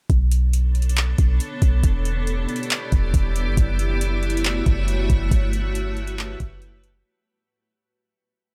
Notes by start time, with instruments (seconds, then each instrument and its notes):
0.10 808-style bass B1, ambient pad B3 D4 A4 C#5, kick, closed hi-hat
0.31 closed hi-hat
0.53 closed hi-hat
0.75 closed hi-hat
0.82 closed hi-hat
0.89 closed hi-hat
0.97 clap, closed hi-hat
1.18 808-style bass B1, kick, closed hi-hat
1.40 closed hi-hat
1.62 808-style bass B1, kick, closed hi-hat
1.84 808-style bass E1, ambient pad E4 G4 D5, kick, closed hi-hat
2.05 closed hi-hat
2.27 closed hi-hat
2.49 closed hi-hat
2.56 closed hi-hat
2.63 closed hi-hat
2.70 clap, closed hi-hat
2.92 808-style bass E1, kick, closed hi-hat
3.14 808-style bass E1, kick, closed hi-hat
3.36 closed hi-hat
3.47 808-style bass G1
3.57 808-style bass F#1, ambient pad A3 E4 F#4 C#5, kick, closed hi-hat
3.79 closed hi-hat
4.01 closed hi-hat
4.23 closed hi-hat
4.30 closed hi-hat
4.37 closed hi-hat
4.44 clap, closed hi-hat
4.66 808-style bass F#1, kick, closed hi-hat
4.88 closed hi-hat
5.10 808-style bass F#1, kick, closed hi-hat
5.31 808-style bass G1, ambient pad G4 B4, kick, closed hi-hat
5.53 closed hi-hat
5.75 closed hi-hat
5.97 closed hi-hat
6.07 closed hi-hat
6.18 clap, closed hi-hat
6.40 808-style bass F#1, kick, closed hi-hat
6.62 closed hi-hat
6.84 closed hi-hat